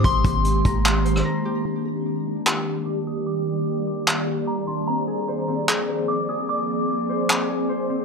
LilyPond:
<<
  \new Staff \with { instrumentName = "Synth bell" } { \time 4/4 \key ees \major \tempo 4 = 149 c'''1 | bes''2 r4 d'''8 ees'''8 | d'''2 r4 bes''8 c'''8 | bes''2 r4 d'''8 ees'''8 |
d'''1 | }
  \new Staff \with { instrumentName = "Harp" } { \time 4/4 \key ees \major <g' c'' bes''>4. bes''4 c''8 bes''8 g'8 | d'8 g'8 d'''8 d'8 g'8 d'''8 d'8 g'8~ | g'4. d'''4 g'8 d'''8 d'8 | c'8 aes'8 c''8 c'8 aes'8 c''8 c'8 aes'8~ |
aes'4. c''4 aes'8 c''8 c'8 | }
  \new Staff \with { instrumentName = "Ambient pad" } { \time 4/4 \key ees \major << { c'1 | d''1~ | d''1~ | d''1~ |
d''1 | } \\ { <ees aes bes g'>1 | <ees g bes g'>1~ | <ees g bes g'>1 | <f c' aes'>1~ |
<f c' aes'>1 | } >> }
  \new Staff \with { instrumentName = "808-style bass" } { \clef bass \time 4/4 \key ees \major aes,,8 aes,,4 aes,,4. r4 | r1 | r1 | r1 |
r1 | }
  \new DrumStaff \with { instrumentName = "Drums" } \drummode { \time 4/4 <hh bd>8 <hh bd>8 hh8 <hh bd>8 <hc hh>8 hh16 ss16 r4 | r4 r4 hc4 r4 | r4 r4 hc4 r4 | r4 r4 hc4 r4 |
r4 r4 hc4 r4 | }
>>